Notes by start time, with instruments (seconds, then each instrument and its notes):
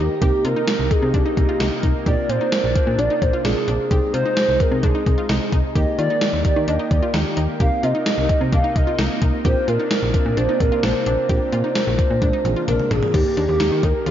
Already playing: analog synth pad D#3 A#3 G4, fm electric piano A#3 D#4 A#4, soft synth lead G4
0.00 synth arpeggio sound D#4
0.22 fm bass C2, analog synth pad C3 D#4, fm electric piano C4 D#4 G4 A#4, synth arpeggio sound G4, soft synth lead G4, kick, closed hi-hat
0.45 fm bass C3, synth arpeggio sound F4, soft synth lead A#4, closed hi-hat
0.56 synth arpeggio sound D#4
0.68 snare, closed hi-hat
0.79 fm bass C2
0.91 soft synth lead G#4, kick, closed hi-hat
1.02 fm bass C3
1.14 fm bass C2, synth arpeggio sound D4, soft synth lead G4, kick, closed hi-hat
1.26 synth arpeggio sound D#4
1.37 fm bass C2, kick, closed hi-hat
1.49 synth arpeggio sound F4
1.60 fm bass C2, synth arpeggio sound D#4, snare, closed hi-hat
1.83 fm bass C2, synth arpeggio sound D#4, kick, closed hi-hat
2.06 fm bass A#1, analog synth pad C3 D4, fm electric piano C4 D4 F4 A#4, synth arpeggio sound G4, soft synth lead D5, kick, closed hi-hat
2.29 fm bass A#2, synth arpeggio sound F4, soft synth lead C5, closed hi-hat
2.41 synth arpeggio sound D#4
2.52 snare, closed hi-hat
2.64 fm bass A#1
2.75 soft synth lead C5, kick, closed hi-hat
2.87 fm bass A#2
2.98 fm bass A#1, synth arpeggio sound D4, soft synth lead D5, closed hi-hat
3.10 synth arpeggio sound D#4
3.22 fm bass A#1, soft synth lead C5, kick, closed hi-hat
3.33 synth arpeggio sound F4
3.45 fm bass A#1, fm electric piano C4 D4 F4 A#4, synth arpeggio sound D4, soft synth lead G#4, snare, closed hi-hat
3.68 fm bass A#1, synth arpeggio sound D4, closed hi-hat
3.91 fm bass C2, analog synth pad G#3 D#4, fm electric piano C4 D#4 G#4 C5, synth arpeggio sound G4, soft synth lead G#4, kick, closed hi-hat
4.14 fm bass C3, synth arpeggio sound F4, soft synth lead C5, closed hi-hat
4.26 synth arpeggio sound D#4
4.37 snare, closed hi-hat
4.49 fm bass C2
4.60 soft synth lead A#4, kick, closed hi-hat
4.72 fm bass C3
4.83 fm bass C2, synth arpeggio sound D4, soft synth lead G#4, kick, closed hi-hat
4.95 synth arpeggio sound D#4
5.06 fm bass C2, kick, closed hi-hat
5.18 synth arpeggio sound F4
5.29 fm bass C2, synth arpeggio sound D#4, snare, closed hi-hat
5.52 fm bass C2, synth arpeggio sound D#4, kick, closed hi-hat
5.76 fm bass D#2, analog synth pad D#3 A#3 G4, fm electric piano A#3 D#4 G4 A#4, synth arpeggio sound G4, soft synth lead D#5, kick, closed hi-hat
5.99 fm bass D#3, synth arpeggio sound F4, soft synth lead D5, closed hi-hat
6.10 synth arpeggio sound D#4
6.21 snare, closed hi-hat
6.33 fm bass D#2
6.45 soft synth lead D5, kick, closed hi-hat
6.56 fm bass D#3
6.68 fm bass D#2, synth arpeggio sound D4, soft synth lead D#5, closed hi-hat
6.79 synth arpeggio sound D#4
6.91 fm bass D#2, soft synth lead D5, kick, closed hi-hat
7.03 synth arpeggio sound F4
7.14 fm bass D#2, synth arpeggio sound D#4, snare, closed hi-hat
7.37 fm bass D#2, synth arpeggio sound D#4, closed hi-hat
7.60 fm bass C2, analog synth pad C3 D#4, fm electric piano C4 D#4 G4 A#4, synth arpeggio sound G4, soft synth lead F5, kick, closed hi-hat
7.83 fm bass C3, synth arpeggio sound F4, soft synth lead D#5, closed hi-hat
7.95 synth arpeggio sound D#4
8.06 snare, closed hi-hat
8.18 fm bass C2
8.29 soft synth lead D#5, kick, closed hi-hat
8.41 fm bass C3
8.52 fm bass C2, synth arpeggio sound D4, soft synth lead F5, kick, closed hi-hat
8.64 synth arpeggio sound D#4
8.76 fm bass C2, soft synth lead D#5, kick, closed hi-hat
8.87 synth arpeggio sound F4
8.99 fm bass C2, synth arpeggio sound D#4, snare, closed hi-hat
9.22 fm bass C2, synth arpeggio sound D#4, kick, closed hi-hat
9.45 fm bass A#1, analog synth pad C3 D4, fm electric piano C4 D4 F4 A#4, synth arpeggio sound G4, soft synth lead C5, kick, closed hi-hat
9.68 fm bass A#2, synth arpeggio sound F4, soft synth lead A#4, closed hi-hat
9.80 synth arpeggio sound D#4
9.91 snare, closed hi-hat
10.03 fm bass A#1
10.14 soft synth lead A#4, kick, closed hi-hat
10.26 fm bass A#2
10.37 fm bass A#1, synth arpeggio sound D4, soft synth lead C5, closed hi-hat
10.49 synth arpeggio sound D#4
10.60 fm bass A#1, soft synth lead A#4, kick, closed hi-hat
10.72 synth arpeggio sound F4
10.83 fm bass A#1, synth arpeggio sound D4, soft synth lead C5, snare, closed hi-hat
11.06 fm bass A#1, synth arpeggio sound D4, closed hi-hat
11.29 fm bass A#1, fm electric piano C4 D4 F4 A#4, synth arpeggio sound G4, soft synth lead C5, kick, closed hi-hat
11.52 fm bass A#2, synth arpeggio sound F4, closed hi-hat
11.64 synth arpeggio sound D#4
11.75 snare, closed hi-hat
11.87 fm bass A#1
11.99 kick, closed hi-hat
12.10 fm bass A#2
12.22 fm bass A#1, synth arpeggio sound D4, kick, closed hi-hat, high tom
12.33 synth arpeggio sound D#4
12.45 fm bass A#1, fm electric piano C4 D4 F4 G#4, closed hi-hat, mid tom
12.56 synth arpeggio sound F4
12.68 fm bass A#1, synth arpeggio sound D4, soft synth lead A#4, closed hi-hat, mid tom
12.80 mid tom
12.91 fm bass A#1, synth arpeggio sound D4, soft synth lead G#4, closed hi-hat, floor tom
13.03 floor tom
13.14 fm bass D#2, analog synth pad D#3 A#3 G4, fm electric piano A#3 D#4 G4 A#4, synth arpeggio sound G4, soft synth lead G4, kick, closed hi-hat, crash
13.37 fm bass D#2, synth arpeggio sound D4, closed hi-hat
13.49 fm bass D#2, soft synth lead G4
13.60 fm bass D#2, synth arpeggio sound D#4, snare, closed hi-hat
13.72 fm bass D#3
13.83 fm bass D#2, synth arpeggio sound D#4, soft synth lead A#4, kick, closed hi-hat
14.06 fm bass D#2, synth arpeggio sound F4, soft synth lead G4, closed hi-hat